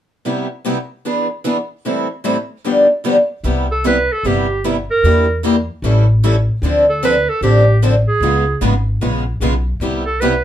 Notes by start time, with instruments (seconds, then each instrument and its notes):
0.25 steel-string acoustic guitar C3 G3 B3 E4 G4
0.65 steel-string acoustic guitar C3 G3 B3 E4 G4
1.05 steel-string acoustic guitar E3 B3 D4 G#4 B4
1.44 steel-string acoustic guitar E3 B3 D4 G#4 B4
1.85 steel-string acoustic guitar A2 E3 G3 C4 E4 A4
2.24 steel-string acoustic guitar A2 E3 G3 C4 E4 A4
2.64 steel-string acoustic guitar G2 D3 F3 B3 D4 G4
3.04 steel-string acoustic guitar G2 D3 F3 B3 D4 G4
3.44 upright bass C2, steel-string acoustic guitar C3 G3 B3 E4 G4
3.71 clarinet A4
3.84 steel-string acoustic guitar C3 G3 B3 E4 G4, clarinet B4
4.12 clarinet A4
4.23 upright bass G1, steel-string acoustic guitar C3 G3 B3 E4 G4, clarinet G4
4.64 steel-string acoustic guitar C3 G3 B3 E4 G4
4.91 clarinet A#4
5.03 upright bass E2, steel-string acoustic guitar E3 G3 A#3 D4 E4 G4 A#4
5.43 steel-string acoustic guitar E3 G3 A#3 D4 E4 G4 A#4
5.82 upright bass A1, steel-string acoustic guitar E3 G3 C#4 E4 A4
6.23 steel-string acoustic guitar E3 G3 C#4 E4 A4
6.62 upright bass D2, steel-string acoustic guitar D3 F3 C4 D4 A4
6.89 clarinet A4
7.04 steel-string acoustic guitar D3 F3 C4 D4 A4, clarinet B4
7.29 clarinet A4
7.41 upright bass A1, steel-string acoustic guitar D3 F3 C4 D4 A4, clarinet G4
7.82 steel-string acoustic guitar D3 F3 C4 D4 A4
8.08 clarinet G#4
8.20 upright bass C#2, steel-string acoustic guitar C#3 G#3 B3 F4 G#4
8.61 upright bass G#1, steel-string acoustic guitar C#3 G#3 B3 F4 G#4
9.01 upright bass A#1, steel-string acoustic guitar C#3 G#3 B3 F4 G#4
9.40 upright bass B1, steel-string acoustic guitar C#3 G#3 B3 F4 G#4
9.80 upright bass C2, steel-string acoustic guitar C3 G3 B3 E4 G4
10.06 clarinet A4
10.21 steel-string acoustic guitar C3 G3 B3 E4 G4, clarinet B4